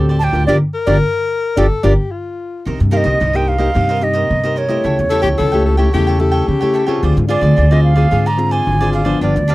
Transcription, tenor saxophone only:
0, 0, Header, 1, 2, 480
1, 0, Start_track
1, 0, Tempo, 545504
1, 424, Time_signature, 4, 2, 24, 8
1, 8402, End_track
2, 0, Start_track
2, 0, Title_t, "Tenor saxophone"
2, 0, Program_c, 0, 66
2, 651, Note_on_c, 0, 70, 106
2, 1392, Note_on_c, 0, 69, 90
2, 1405, Note_off_c, 0, 70, 0
2, 1621, Note_on_c, 0, 67, 75
2, 1634, Note_off_c, 0, 69, 0
2, 1860, Note_on_c, 0, 65, 70
2, 1873, Note_off_c, 0, 67, 0
2, 2342, Note_off_c, 0, 65, 0
2, 4488, Note_on_c, 0, 69, 91
2, 4590, Note_off_c, 0, 69, 0
2, 4595, Note_on_c, 0, 67, 83
2, 4656, Note_off_c, 0, 67, 0
2, 4734, Note_on_c, 0, 69, 96
2, 4961, Note_off_c, 0, 69, 0
2, 4976, Note_on_c, 0, 69, 85
2, 5079, Note_off_c, 0, 69, 0
2, 5084, Note_on_c, 0, 67, 78
2, 5204, Note_off_c, 0, 67, 0
2, 5223, Note_on_c, 0, 67, 87
2, 5452, Note_on_c, 0, 69, 85
2, 5465, Note_off_c, 0, 67, 0
2, 5698, Note_on_c, 0, 67, 81
2, 5711, Note_off_c, 0, 69, 0
2, 6300, Note_off_c, 0, 67, 0
2, 8402, End_track
0, 0, End_of_file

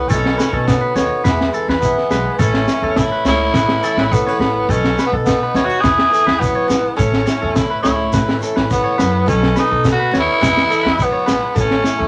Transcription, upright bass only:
0, 0, Header, 1, 2, 480
1, 0, Start_track
1, 0, Key_signature, 3, "major"
1, 0, Tempo, 572519
1, 90, Time_signature, 4, 2, 24, 8
1, 10126, End_track
2, 0, Start_track
2, 0, Title_t, "Upright bass"
2, 0, Program_c, 0, 32
2, 92, Note_on_c, 0, 35, 84
2, 286, Note_off_c, 0, 35, 0
2, 439, Note_on_c, 0, 47, 89
2, 734, Note_off_c, 0, 47, 0
2, 798, Note_on_c, 0, 39, 76
2, 904, Note_off_c, 0, 39, 0
2, 1048, Note_on_c, 0, 40, 89
2, 1244, Note_off_c, 0, 40, 0
2, 1409, Note_on_c, 0, 40, 77
2, 1606, Note_off_c, 0, 40, 0
2, 1769, Note_on_c, 0, 35, 78
2, 1870, Note_off_c, 0, 35, 0
2, 2007, Note_on_c, 0, 33, 91
2, 2203, Note_off_c, 0, 33, 0
2, 2364, Note_on_c, 0, 40, 75
2, 2564, Note_off_c, 0, 40, 0
2, 2721, Note_on_c, 0, 37, 79
2, 2920, Note_off_c, 0, 37, 0
2, 2966, Note_on_c, 0, 45, 86
2, 3163, Note_off_c, 0, 45, 0
2, 3326, Note_on_c, 0, 33, 82
2, 3524, Note_off_c, 0, 33, 0
2, 3684, Note_on_c, 0, 33, 77
2, 3882, Note_off_c, 0, 33, 0
2, 3928, Note_on_c, 0, 35, 86
2, 4124, Note_off_c, 0, 35, 0
2, 4295, Note_on_c, 0, 47, 84
2, 4584, Note_off_c, 0, 47, 0
2, 4648, Note_on_c, 0, 39, 80
2, 4750, Note_off_c, 0, 39, 0
2, 4891, Note_on_c, 0, 40, 82
2, 5086, Note_off_c, 0, 40, 0
2, 5255, Note_on_c, 0, 40, 77
2, 5450, Note_off_c, 0, 40, 0
2, 5615, Note_on_c, 0, 34, 75
2, 5714, Note_off_c, 0, 34, 0
2, 5857, Note_on_c, 0, 33, 90
2, 6049, Note_off_c, 0, 33, 0
2, 6225, Note_on_c, 0, 40, 77
2, 6416, Note_off_c, 0, 40, 0
2, 6579, Note_on_c, 0, 37, 76
2, 6770, Note_off_c, 0, 37, 0
2, 6822, Note_on_c, 0, 45, 85
2, 7012, Note_off_c, 0, 45, 0
2, 7187, Note_on_c, 0, 33, 79
2, 7377, Note_off_c, 0, 33, 0
2, 7542, Note_on_c, 0, 42, 83
2, 7732, Note_off_c, 0, 42, 0
2, 7780, Note_on_c, 0, 35, 87
2, 7971, Note_off_c, 0, 35, 0
2, 8145, Note_on_c, 0, 47, 82
2, 8430, Note_off_c, 0, 47, 0
2, 8500, Note_on_c, 0, 39, 79
2, 8596, Note_off_c, 0, 39, 0
2, 8741, Note_on_c, 0, 40, 82
2, 8931, Note_off_c, 0, 40, 0
2, 9101, Note_on_c, 0, 40, 80
2, 9293, Note_off_c, 0, 40, 0
2, 9452, Note_on_c, 0, 34, 79
2, 9552, Note_off_c, 0, 34, 0
2, 9693, Note_on_c, 0, 33, 86
2, 9887, Note_off_c, 0, 33, 0
2, 10061, Note_on_c, 0, 40, 80
2, 10126, Note_off_c, 0, 40, 0
2, 10126, End_track
0, 0, End_of_file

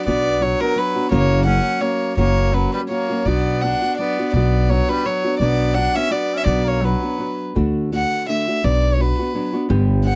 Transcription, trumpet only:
0, 0, Header, 1, 2, 480
1, 0, Start_track
1, 0, Key_signature, 2, "minor"
1, 0, Tempo, 355240
1, 85, Time_signature, 3, 2, 24, 8
1, 8726, Tempo, 364742
1, 11126, Tempo, 355030
1, 13656, End_track
2, 0, Start_track
2, 0, Title_t, "Trumpet"
2, 0, Program_c, 0, 56
2, 74, Note_on_c, 0, 59, 65
2, 579, Note_on_c, 0, 54, 70
2, 599, Note_off_c, 0, 59, 0
2, 830, Note_off_c, 0, 54, 0
2, 830, Note_on_c, 0, 54, 76
2, 1034, Note_off_c, 0, 54, 0
2, 1034, Note_on_c, 0, 54, 67
2, 1473, Note_off_c, 0, 54, 0
2, 1481, Note_on_c, 0, 58, 78
2, 1939, Note_off_c, 0, 58, 0
2, 1967, Note_on_c, 0, 61, 81
2, 2465, Note_on_c, 0, 58, 66
2, 2485, Note_off_c, 0, 61, 0
2, 2919, Note_off_c, 0, 58, 0
2, 2927, Note_on_c, 0, 58, 63
2, 3417, Note_on_c, 0, 54, 67
2, 3437, Note_off_c, 0, 58, 0
2, 3688, Note_off_c, 0, 54, 0
2, 3696, Note_on_c, 0, 55, 56
2, 3800, Note_off_c, 0, 55, 0
2, 3911, Note_on_c, 0, 58, 60
2, 4427, Note_on_c, 0, 59, 59
2, 4447, Note_off_c, 0, 58, 0
2, 4914, Note_on_c, 0, 62, 73
2, 4934, Note_off_c, 0, 59, 0
2, 5395, Note_off_c, 0, 62, 0
2, 5408, Note_on_c, 0, 59, 69
2, 5846, Note_off_c, 0, 59, 0
2, 5878, Note_on_c, 0, 59, 60
2, 6364, Note_on_c, 0, 54, 67
2, 6384, Note_off_c, 0, 59, 0
2, 6631, Note_on_c, 0, 55, 71
2, 6651, Note_off_c, 0, 54, 0
2, 6850, Note_on_c, 0, 54, 65
2, 6871, Note_off_c, 0, 55, 0
2, 7291, Note_off_c, 0, 54, 0
2, 7299, Note_on_c, 0, 59, 64
2, 7773, Note_on_c, 0, 62, 76
2, 7793, Note_off_c, 0, 59, 0
2, 8039, Note_on_c, 0, 61, 68
2, 8060, Note_off_c, 0, 62, 0
2, 8253, Note_on_c, 0, 59, 58
2, 8274, Note_off_c, 0, 61, 0
2, 8569, Note_on_c, 0, 61, 60
2, 8590, Note_off_c, 0, 59, 0
2, 8721, Note_off_c, 0, 61, 0
2, 8729, Note_on_c, 0, 59, 60
2, 8975, Note_on_c, 0, 58, 64
2, 8995, Note_off_c, 0, 59, 0
2, 9199, Note_on_c, 0, 54, 57
2, 9218, Note_off_c, 0, 58, 0
2, 9952, Note_off_c, 0, 54, 0
2, 13656, End_track
0, 0, End_of_file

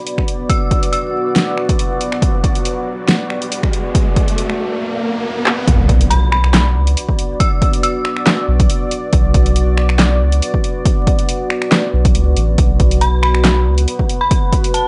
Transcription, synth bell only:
0, 0, Header, 1, 2, 480
1, 0, Start_track
1, 0, Key_signature, 2, "minor"
1, 0, Tempo, 431655
1, 552, Time_signature, 4, 2, 24, 8
1, 16545, End_track
2, 0, Start_track
2, 0, Title_t, "Synth bell"
2, 0, Program_c, 0, 98
2, 550, Note_on_c, 0, 88, 90
2, 920, Note_off_c, 0, 88, 0
2, 1029, Note_on_c, 0, 88, 87
2, 1706, Note_off_c, 0, 88, 0
2, 6788, Note_on_c, 0, 83, 89
2, 7007, Note_off_c, 0, 83, 0
2, 7028, Note_on_c, 0, 83, 87
2, 7398, Note_off_c, 0, 83, 0
2, 8229, Note_on_c, 0, 88, 93
2, 8599, Note_off_c, 0, 88, 0
2, 8710, Note_on_c, 0, 88, 90
2, 9386, Note_off_c, 0, 88, 0
2, 14470, Note_on_c, 0, 83, 93
2, 14689, Note_off_c, 0, 83, 0
2, 14708, Note_on_c, 0, 83, 95
2, 15079, Note_off_c, 0, 83, 0
2, 15800, Note_on_c, 0, 83, 92
2, 16151, Note_off_c, 0, 83, 0
2, 16391, Note_on_c, 0, 81, 90
2, 16545, Note_off_c, 0, 81, 0
2, 16545, End_track
0, 0, End_of_file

